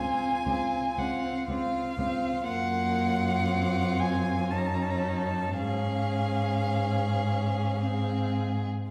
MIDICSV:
0, 0, Header, 1, 5, 480
1, 0, Start_track
1, 0, Key_signature, -5, "major"
1, 0, Tempo, 1008403
1, 1180, Time_signature, 3, 2, 24, 8
1, 2143, Tempo, 1100917
1, 4064, End_track
2, 0, Start_track
2, 0, Title_t, "Violin"
2, 0, Program_c, 0, 40
2, 0, Note_on_c, 0, 80, 56
2, 466, Note_on_c, 0, 78, 49
2, 474, Note_off_c, 0, 80, 0
2, 707, Note_off_c, 0, 78, 0
2, 710, Note_on_c, 0, 77, 56
2, 1172, Note_off_c, 0, 77, 0
2, 1181, Note_on_c, 0, 78, 64
2, 1902, Note_on_c, 0, 80, 58
2, 1909, Note_off_c, 0, 78, 0
2, 2143, Note_on_c, 0, 81, 46
2, 2150, Note_off_c, 0, 80, 0
2, 2175, Note_on_c, 0, 82, 48
2, 2181, Note_off_c, 0, 81, 0
2, 2211, Note_on_c, 0, 81, 46
2, 2217, Note_off_c, 0, 82, 0
2, 2246, Note_on_c, 0, 82, 47
2, 2252, Note_off_c, 0, 81, 0
2, 2280, Note_on_c, 0, 81, 45
2, 2287, Note_off_c, 0, 82, 0
2, 2316, Note_on_c, 0, 82, 45
2, 2323, Note_off_c, 0, 81, 0
2, 2351, Note_on_c, 0, 81, 42
2, 2357, Note_off_c, 0, 82, 0
2, 2394, Note_on_c, 0, 82, 40
2, 2400, Note_off_c, 0, 81, 0
2, 2430, Note_on_c, 0, 81, 51
2, 2437, Note_off_c, 0, 82, 0
2, 2614, Note_off_c, 0, 81, 0
2, 2617, Note_on_c, 0, 77, 51
2, 3810, Note_off_c, 0, 77, 0
2, 4064, End_track
3, 0, Start_track
3, 0, Title_t, "Violin"
3, 0, Program_c, 1, 40
3, 0, Note_on_c, 1, 65, 30
3, 222, Note_off_c, 1, 65, 0
3, 226, Note_on_c, 1, 65, 35
3, 462, Note_off_c, 1, 65, 0
3, 465, Note_on_c, 1, 65, 35
3, 701, Note_off_c, 1, 65, 0
3, 710, Note_on_c, 1, 65, 36
3, 940, Note_off_c, 1, 65, 0
3, 947, Note_on_c, 1, 65, 39
3, 1177, Note_off_c, 1, 65, 0
3, 1181, Note_on_c, 1, 65, 40
3, 2149, Note_on_c, 1, 63, 37
3, 2155, Note_off_c, 1, 65, 0
3, 2616, Note_off_c, 1, 63, 0
3, 2618, Note_on_c, 1, 68, 36
3, 3569, Note_off_c, 1, 68, 0
3, 3583, Note_on_c, 1, 68, 33
3, 3965, Note_off_c, 1, 68, 0
3, 4064, End_track
4, 0, Start_track
4, 0, Title_t, "Viola"
4, 0, Program_c, 2, 41
4, 0, Note_on_c, 2, 60, 31
4, 220, Note_off_c, 2, 60, 0
4, 228, Note_on_c, 2, 60, 34
4, 465, Note_off_c, 2, 60, 0
4, 469, Note_on_c, 2, 60, 33
4, 704, Note_off_c, 2, 60, 0
4, 709, Note_on_c, 2, 60, 37
4, 940, Note_off_c, 2, 60, 0
4, 946, Note_on_c, 2, 60, 39
4, 1177, Note_off_c, 2, 60, 0
4, 1179, Note_on_c, 2, 58, 42
4, 1655, Note_on_c, 2, 60, 37
4, 1662, Note_off_c, 2, 58, 0
4, 2143, Note_on_c, 2, 61, 41
4, 2150, Note_off_c, 2, 60, 0
4, 2613, Note_off_c, 2, 61, 0
4, 2618, Note_on_c, 2, 61, 35
4, 3581, Note_on_c, 2, 60, 35
4, 3588, Note_off_c, 2, 61, 0
4, 3971, Note_off_c, 2, 60, 0
4, 4064, End_track
5, 0, Start_track
5, 0, Title_t, "Cello"
5, 0, Program_c, 3, 42
5, 223, Note_on_c, 3, 37, 42
5, 261, Note_off_c, 3, 37, 0
5, 469, Note_on_c, 3, 37, 37
5, 507, Note_off_c, 3, 37, 0
5, 707, Note_on_c, 3, 37, 39
5, 745, Note_off_c, 3, 37, 0
5, 943, Note_on_c, 3, 37, 40
5, 981, Note_off_c, 3, 37, 0
5, 1179, Note_on_c, 3, 42, 44
5, 2595, Note_off_c, 3, 42, 0
5, 2612, Note_on_c, 3, 44, 40
5, 3955, Note_off_c, 3, 44, 0
5, 4064, End_track
0, 0, End_of_file